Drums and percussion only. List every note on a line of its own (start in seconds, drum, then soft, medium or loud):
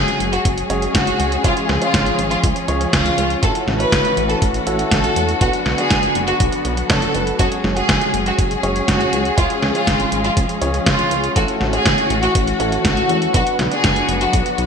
0.08 closed hi-hat soft
0.20 closed hi-hat medium
0.33 closed hi-hat soft
0.45 kick loud
0.45 closed hi-hat loud
0.58 closed hi-hat soft
0.70 closed hi-hat medium
0.82 closed hi-hat soft
0.95 kick loud
0.95 snare loud
0.95 closed hi-hat loud
1.07 closed hi-hat soft
1.20 closed hi-hat medium
1.32 closed hi-hat soft
1.44 kick loud
1.44 closed hi-hat medium
1.57 closed hi-hat soft
1.69 snare medium
1.82 closed hi-hat soft
1.94 kick loud
1.94 snare loud
1.94 closed hi-hat medium
2.06 closed hi-hat soft
2.19 closed hi-hat medium
2.31 closed hi-hat soft
2.44 kick loud
2.44 closed hi-hat medium
2.56 closed hi-hat soft
2.68 closed hi-hat medium
2.81 closed hi-hat soft
2.93 kick loud
2.93 snare loud
2.93 closed hi-hat medium
3.06 closed hi-hat soft
3.18 closed hi-hat medium
3.30 closed hi-hat soft
3.43 kick loud
3.43 closed hi-hat medium
3.55 closed hi-hat soft
3.68 snare medium
3.80 closed hi-hat soft
3.92 kick loud
3.92 snare loud
3.92 closed hi-hat medium
4.05 closed hi-hat soft
4.17 closed hi-hat medium
4.30 closed hi-hat soft
4.42 kick loud
4.42 closed hi-hat medium
4.54 closed hi-hat soft
4.67 closed hi-hat medium
4.79 closed hi-hat soft
4.91 kick loud
4.91 snare loud
4.91 closed hi-hat medium
5.04 closed hi-hat soft
5.16 closed hi-hat medium
5.29 closed hi-hat soft
5.41 kick loud
5.41 closed hi-hat medium
5.53 closed hi-hat soft
5.66 snare medium
5.78 closed hi-hat soft
5.90 kick loud
5.90 snare loud
5.90 closed hi-hat medium
6.03 closed hi-hat soft
6.15 closed hi-hat medium
6.28 closed hi-hat soft
6.40 kick loud
6.40 closed hi-hat medium
6.52 closed hi-hat soft
6.65 closed hi-hat medium
6.77 closed hi-hat soft
6.90 kick loud
6.90 snare loud
6.90 closed hi-hat medium
7.02 closed hi-hat soft
7.15 closed hi-hat medium
7.27 closed hi-hat soft
7.39 kick loud
7.39 closed hi-hat medium
7.52 closed hi-hat soft
7.64 snare medium
7.77 closed hi-hat soft
7.89 kick loud
7.89 snare loud
7.89 closed hi-hat medium
8.01 closed hi-hat soft
8.14 closed hi-hat medium
8.26 closed hi-hat soft
8.39 kick loud
8.39 closed hi-hat medium
8.51 closed hi-hat soft
8.63 closed hi-hat medium
8.76 closed hi-hat soft
8.88 kick loud
8.88 snare loud
8.88 closed hi-hat medium
9.01 closed hi-hat soft
9.13 closed hi-hat medium
9.25 closed hi-hat soft
9.38 kick loud
9.38 closed hi-hat medium
9.50 closed hi-hat soft
9.63 snare medium
9.75 closed hi-hat soft
9.87 kick loud
9.87 snare loud
9.87 closed hi-hat medium
10.00 closed hi-hat soft
10.12 closed hi-hat medium
10.24 closed hi-hat soft
10.37 kick loud
10.37 closed hi-hat medium
10.49 closed hi-hat soft
10.62 closed hi-hat medium
10.74 closed hi-hat soft
10.86 kick loud
10.86 snare loud
10.86 closed hi-hat medium
10.99 closed hi-hat soft
11.11 closed hi-hat medium
11.24 closed hi-hat soft
11.36 kick loud
11.36 closed hi-hat medium
11.48 closed hi-hat soft
11.61 snare medium
11.73 closed hi-hat soft
11.86 kick loud
11.86 snare loud
11.86 closed hi-hat medium
11.98 closed hi-hat soft
12.10 closed hi-hat medium
12.23 closed hi-hat soft
12.35 kick loud
12.35 closed hi-hat medium
12.47 closed hi-hat soft
12.60 closed hi-hat medium
12.72 closed hi-hat soft
12.85 kick loud
12.85 snare loud
12.85 closed hi-hat medium
12.97 closed hi-hat soft
13.09 closed hi-hat medium
13.22 closed hi-hat soft
13.34 kick loud
13.34 closed hi-hat medium
13.47 closed hi-hat soft
13.59 snare medium
13.59 closed hi-hat soft
13.72 closed hi-hat soft
13.84 kick loud
13.84 snare loud
13.84 closed hi-hat medium
13.96 closed hi-hat soft
14.09 closed hi-hat medium
14.21 closed hi-hat soft
14.33 kick loud
14.33 closed hi-hat medium
14.46 closed hi-hat soft
14.58 closed hi-hat medium